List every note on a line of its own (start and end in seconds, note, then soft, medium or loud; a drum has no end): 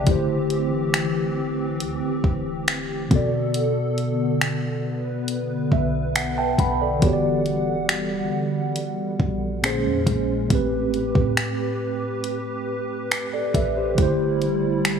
0.00 3.06 D3 medium
0.00 3.07 G4 medium
0.06 1.82 D1 loud
0.06 3.08 E3 medium
0.06 3.06 A3 medium
0.06 3.08 C4 medium
0.06 3.07 E4 medium
0.06 3.08 G4 medium
0.06 kick loud
0.06 closed hi-hat medium
0.11 3.09 C5 medium
0.50 closed hi-hat soft
0.94 finger snap loud
0.94 closed hi-hat medium
1.80 2.04 D2 loud
1.80 closed hi-hat medium
2.02 2.23 D1 medium
2.24 3.07 D1 loud
2.24 kick medium
2.68 finger snap loud
2.68 closed hi-hat medium
3.08 6.53 B2 medium
3.08 5.68 B2 loud
3.08 9.59 D3 medium
3.08 6.54 B3 medium
3.08 6.98 B3 medium
3.08 6.55 F#4 medium
3.08 4.83 A4 medium
3.08 kick loud
3.08 closed hi-hat medium
3.14 6.13 A4 medium
3.14 6.14 D5 medium
3.54 closed hi-hat medium
3.98 closed hi-hat soft
4.41 finger snap loud
4.41 closed hi-hat medium
4.85 7.00 B4 medium
5.28 closed hi-hat medium
5.72 6.55 B1 medium
5.72 6.13 E5 medium
5.72 kick medium
6.16 6.36 F#5 medium
6.16 finger snap loud
6.16 closed hi-hat medium
6.38 6.58 E5 medium
6.38 6.58 G5 medium
6.38 6.58 A5 medium
6.58 7.00 B1 loud
6.58 6.80 B4 medium
6.58 6.80 F#5 medium
6.58 7.00 B5 medium
6.58 kick medium
6.58 closed hi-hat medium
6.81 7.23 A4 medium
6.81 7.12 D5 medium
6.99 8.29 E1 loud
6.99 9.58 E3 medium
6.99 9.61 G3 medium
6.99 9.59 B3 medium
6.99 9.59 F#4 medium
6.99 9.61 F#5 medium
6.99 kick loud
6.99 closed hi-hat medium
7.05 9.60 G4 medium
7.05 7.11 C#5 medium
7.13 9.65 D5 medium
7.46 closed hi-hat soft
7.89 finger snap loud
7.89 closed hi-hat medium
8.76 closed hi-hat medium
9.20 9.87 A#1 loud
9.20 kick medium
9.62 10.50 A#2 medium
9.62 10.49 G#3 medium
9.62 10.50 A#3 medium
9.62 10.49 C#4 medium
9.62 10.51 C#4 medium
9.62 10.51 G#4 medium
9.62 10.51 C5 medium
9.62 finger snap loud
9.62 closed hi-hat medium
9.85 10.06 F2 medium
10.07 10.48 A#1 loud
10.07 kick medium
10.07 closed hi-hat medium
10.48 11.13 A1 loud
10.48 13.93 A2 medium
10.48 13.94 A3 medium
10.48 13.95 C4 medium
10.48 13.94 G4 medium
10.48 13.94 B4 medium
10.48 kick loud
10.48 closed hi-hat medium
10.53 13.09 G4 medium
10.53 13.09 B4 medium
10.94 closed hi-hat soft
11.15 13.50 A2 loud
11.15 kick medium
11.37 finger snap loud
11.37 closed hi-hat medium
12.24 closed hi-hat medium
13.11 finger snap loud
13.11 closed hi-hat medium
13.34 13.54 A4 medium
13.34 13.54 D5 medium
13.54 13.96 A1 loud
13.54 13.76 B4 medium
13.54 13.76 E5 medium
13.54 kick medium
13.54 closed hi-hat medium
13.77 13.99 G4 medium
13.77 14.01 C5 medium
13.95 15.00 D1 loud
13.95 15.00 D3 medium
13.95 15.00 G3 medium
13.95 15.00 A3 medium
13.95 15.00 E4 medium
13.95 kick loud
13.95 closed hi-hat medium
14.01 15.00 G4 medium
14.01 15.00 C5 medium
14.42 closed hi-hat soft
14.85 finger snap loud
14.85 closed hi-hat medium